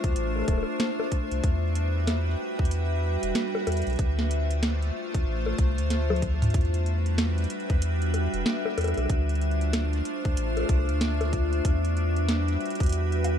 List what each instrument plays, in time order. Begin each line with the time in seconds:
Already playing: ambient pad A3 D4 F4 C5 E5
0.04 sub bass D2, kick, closed hi-hat
0.16 sub bass A1, closed hi-hat
0.36 high bongo
0.39 high bongo
0.42 high bongo
0.45 closed hi-hat, high bongo
0.48 sub bass D1, kick, high bongo
0.53 high bongo
0.58 high bongo
0.63 high bongo
0.80 snare, closed hi-hat
1.00 high bongo
1.12 kick, closed hi-hat
1.31 sub bass C2, closed hi-hat
1.44 sub bass E2, ambient pad G3 F#4 B4, kick, closed hi-hat
1.75 closed hi-hat
2.07 snare, closed hi-hat, high bongo
2.59 sub bass E2, kick
2.65 closed hi-hat
2.71 closed hi-hat
3.23 sub bass E1, closed hi-hat
3.35 snare, closed hi-hat
3.55 high bongo
3.67 sub bass E2, closed hi-hat, high bongo
3.72 closed hi-hat
3.77 closed hi-hat
3.82 closed hi-hat
3.87 sub bass B1, closed hi-hat
3.90 closed hi-hat
3.93 closed hi-hat
3.96 ambient pad A3 F4 C5, closed hi-hat
3.99 sub bass D2, kick, closed hi-hat
4.19 snare
4.31 closed hi-hat
4.51 closed hi-hat
4.63 snare, closed hi-hat
4.82 closed hi-hat
5.14 sub bass D2, kick, closed hi-hat
5.26 sub bass A1
5.46 high bongo
5.58 sub bass C2, kick, closed hi-hat
5.78 sub bass D2, closed hi-hat
5.90 snare, closed hi-hat
6.10 high tom, high bongo
6.16 closed hi-hat
6.22 kick, closed hi-hat
6.42 closed hi-hat, mid tom
6.50 ambient pad G3 D4 F#4 B4 E5, closed hi-hat
6.54 sub bass E2, kick, closed hi-hat
6.61 closed hi-hat
6.65 closed hi-hat
6.74 closed hi-hat
6.86 closed hi-hat
7.06 closed hi-hat
7.18 snare, closed hi-hat
7.38 closed hi-hat
7.44 closed hi-hat
7.50 closed hi-hat
7.60 closed hi-hat
7.70 sub bass E2, kick, closed hi-hat
7.82 closed hi-hat
8.02 closed hi-hat
8.14 closed hi-hat, high bongo
8.34 sub bass E1, closed hi-hat
8.46 snare
8.66 high bongo
8.78 sub bass E2, closed hi-hat, high bongo
8.81 closed hi-hat
8.84 closed hi-hat, high bongo
8.88 closed hi-hat, high bongo
8.94 sub bass B1, closed hi-hat
8.97 closed hi-hat, high bongo
9.06 ambient pad A3 F4 C5, kick, high bongo
9.10 sub bass D2, closed hi-hat
9.29 closed hi-hat
9.35 closed hi-hat
9.41 closed hi-hat
9.51 closed hi-hat
9.61 closed hi-hat
9.73 snare, closed hi-hat, high bongo
9.93 closed hi-hat
10.05 closed hi-hat
10.25 sub bass D2, kick, closed hi-hat
10.37 sub bass A1, closed hi-hat
10.57 closed hi-hat, high bongo
10.60 high bongo
10.63 high bongo
10.66 sub bass C2, kick, closed hi-hat, high bongo
10.69 high bongo
10.74 high bongo
10.79 high bongo
10.84 high bongo
10.89 sub bass D2, closed hi-hat
11.01 snare, closed hi-hat
11.21 closed hi-hat, high bongo
11.33 kick, closed hi-hat
11.53 closed hi-hat
11.65 sub bass E2, ambient pad G3 F#4 B4, kick, closed hi-hat
11.85 closed hi-hat
11.97 closed hi-hat
12.16 closed hi-hat
12.29 snare, closed hi-hat
12.48 closed hi-hat
12.61 closed hi-hat
12.66 closed hi-hat
12.70 closed hi-hat
12.75 closed hi-hat
12.80 sub bass E2, kick, closed hi-hat
12.83 closed hi-hat
12.86 closed hi-hat
12.89 closed hi-hat
12.92 closed hi-hat
13.12 closed hi-hat
13.24 closed hi-hat, high bongo